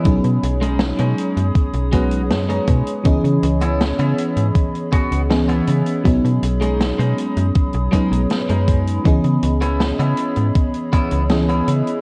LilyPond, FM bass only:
\new Staff \with { instrumentName = "FM bass" } { \clef bass \time 4/4 \key cis \minor \tempo 4 = 80 b,,16 b,16 b,,8. b,16 r16 fis,16 r16 b,,8. fis,8 b,16 r16 | cis,16 cis16 cis,8. cis16 r16 gis,16 r8. cis,8. cis16 r16 | b,,16 b,16 b,,8. b,16 r16 fis,16 r16 b,,16 r16 b,,16 r16 fis,8. | cis,16 cis16 cis,8. cis16 r16 gis,16 r8. cis,8. cis16 r16 | }